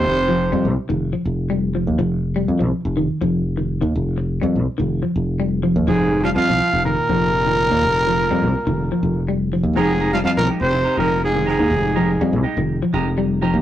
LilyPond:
<<
  \new Staff \with { instrumentName = "Trumpet" } { \time 4/4 \key f \minor \tempo 4 = 123 c''4. r2 r8 | r1 | r1 | aes'8. f''16 f''4 bes'2~ |
bes'2. r4 | aes'8. f''16 f''16 bes'8 c''8. bes'8 aes'8 aes'8~ | aes'4. r2 r8 | }
  \new Staff \with { instrumentName = "Clean electric guitar" } { \time 4/4 \key f \minor r1 | r1 | r1 | r1 |
r1 | <aes ees' g' bes'>16 r16 <aes ees' bes'>16 r8. <aes ees' g'>16 r8 <ees' g' bes'>16 <aes ees' g' bes'>16 r8. <aes ees' g' bes'>16 <ees' g' bes'>16 | r8 <aes ees' g' bes'>16 r8. <aes ees' g'>16 r8. <aes ees' g' bes'>16 r8. <ees' g' bes'>16 r16 | }
  \new Staff \with { instrumentName = "Clean electric guitar" } { \clef bass \time 4/4 \key f \minor ees16 r16 f8 g8 r16 ees8 f8 r16 g8 f8 | f8 r16 g8 f8 r16 ees8 f8 r16 ees8 ees16~ | ees16 r8. g8 r16 ees8 f8 r16 g8 f8 | f8 r16 g8 f8 r16 ees8 f8 r16 ees8 ees16~ |
ees16 r16 f8 g8 r16 ees8 f8 r16 g8 f8 | f8 r16 g8 f8 r8. f8 r16 ees8 ees16~ | ees16 r16 f8 g8 r16 ees8 f8 r16 g8 f8 | }
  \new Staff \with { instrumentName = "Baritone saxophone" } { \clef bass \time 4/4 \key f \minor c4. r2 r8 | r1 | r1 | aes,8. f16 f4 bes,2~ |
bes,2. r4 | aes,8. f16 f16 bes,8 c8. bes,8 aes,8 aes,8~ | aes,4. r2 r8 | }
  \new Staff \with { instrumentName = "Trombone" } { \clef bass \time 4/4 \key f \minor c4. r2 r8 | r1 | r1 | aes,8. f16 f4 bes,2~ |
bes,2. r4 | aes,8. f16 f16 bes,8 c8. bes,8 aes,8 aes,8~ | aes,4. r2 r8 | }
  \new Staff \with { instrumentName = "Fingered electric bass" } { \clef bass \time 4/4 \key f \minor f,,4 f,16 c,16 r16 f,,8 r16 f,,4~ f,,16 ees,16 | f,,4 f,16 c,16 r16 f,,8 r16 f,,4~ f,,16 ees,16 | f,,4 f,16 c,16 r16 f,,8 r16 f,,4~ f,,16 ees,16 | f,,4 f,16 c,16 r16 f,,8 r16 f,,4~ f,,16 ees,16 |
f,,4 f,16 c,16 r16 f,,8 r16 f,,4~ f,,16 ees,16 | f,,4 f,16 c,16 r16 f,,8 r16 f,,4~ f,,16 ees,16 | f,,4 f,16 c,16 r16 f,,8 r16 f,,4~ f,,16 ees,16 | }
>>